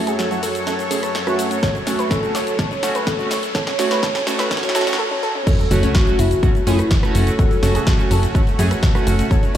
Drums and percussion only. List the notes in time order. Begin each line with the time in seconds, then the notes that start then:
0.07 closed hi-hat, shaker
0.19 snare, closed hi-hat, shaker
0.31 closed hi-hat, shaker
0.43 open hi-hat, shaker
0.55 closed hi-hat, shaker
0.67 snare, closed hi-hat, shaker
0.79 closed hi-hat, shaker
0.91 open hi-hat, shaker
1.03 cross-stick, closed hi-hat, shaker
1.15 snare, closed hi-hat, shaker
1.27 cross-stick, closed hi-hat, shaker
1.39 open hi-hat, shaker
1.51 closed hi-hat, shaker
1.63 kick, snare, closed hi-hat, shaker
1.75 closed hi-hat, shaker
1.87 snare, open hi-hat, shaker
1.99 closed hi-hat, shaker
2.11 kick, snare, closed hi-hat, shaker
2.23 closed hi-hat, shaker
2.35 snare, open hi-hat, shaker
2.47 closed hi-hat, shaker
2.59 kick, snare, closed hi-hat, shaker
2.71 closed hi-hat, shaker
2.83 snare, open hi-hat, shaker
2.95 closed hi-hat, shaker
3.07 kick, snare, closed hi-hat, shaker
3.19 closed hi-hat, shaker
3.31 snare, open hi-hat, shaker
3.43 closed hi-hat, shaker
3.55 kick, snare, closed hi-hat, shaker
3.67 snare, closed hi-hat, shaker
3.79 snare, open hi-hat, shaker
3.91 snare, closed hi-hat, shaker
4.03 kick, snare, closed hi-hat, shaker
4.15 snare, closed hi-hat, shaker
4.27 snare, open hi-hat, shaker
4.39 snare, closed hi-hat, shaker
4.51 kick, snare, closed hi-hat, shaker
4.57 snare
4.63 snare, closed hi-hat, shaker
4.69 snare
4.75 snare, open hi-hat, shaker
4.81 snare
4.87 snare, closed hi-hat, shaker
4.93 snare
5.47 kick, closed hi-hat, crash, shaker
5.59 closed hi-hat, shaker
5.71 open hi-hat, shaker
5.83 closed hi-hat, shaker
5.95 kick, snare, closed hi-hat, shaker
6.07 closed hi-hat, shaker
6.19 open hi-hat, shaker
6.31 closed hi-hat, shaker
6.43 kick, closed hi-hat, shaker
6.55 closed hi-hat, shaker
6.67 open hi-hat, shaker
6.79 cross-stick, closed hi-hat, shaker
6.91 kick, snare, closed hi-hat, shaker
7.03 cross-stick, closed hi-hat, shaker
7.15 open hi-hat, shaker
7.27 closed hi-hat, shaker
7.39 kick, closed hi-hat, shaker
7.51 closed hi-hat, shaker
7.63 snare, open hi-hat, shaker
7.75 closed hi-hat, shaker
7.87 kick, snare, closed hi-hat, shaker
7.99 closed hi-hat, shaker
8.11 open hi-hat, shaker
8.23 closed hi-hat, shaker
8.35 kick, closed hi-hat, shaker
8.47 closed hi-hat, shaker
8.59 open hi-hat, shaker
8.71 cross-stick, closed hi-hat, shaker
8.83 kick, snare, closed hi-hat, shaker
8.95 cross-stick, closed hi-hat, shaker
9.07 open hi-hat, shaker
9.19 closed hi-hat, shaker
9.31 kick, closed hi-hat, shaker
9.43 closed hi-hat, shaker